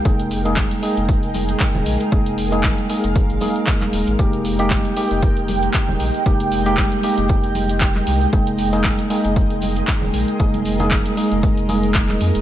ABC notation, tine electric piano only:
X:1
M:4/4
L:1/16
Q:"Swing 16ths" 1/4=116
K:Ab
V:1 name="Tine electric piano"
[A,B,EA]3 [A,B,EA]3 [A,B,EA]8- [A,B,EA]2 | [A,B,EA]3 [A,B,EA]3 [A,B,EA]4 [A,B,EA]6 | [A,B,EG]3 [A,B,EG]3 [A,B,EG]8- [A,B,EG]2 | [A,B,EG]3 [A,B,EG]3 [A,B,EG]8- [A,B,EG]2 |
[A,B,EA]3 [A,B,EA]3 [A,B,EA]8- [A,B,EA]2 | [A,B,EA]3 [A,B,EA]3 [A,B,EA]4 [A,B,EA]6 |]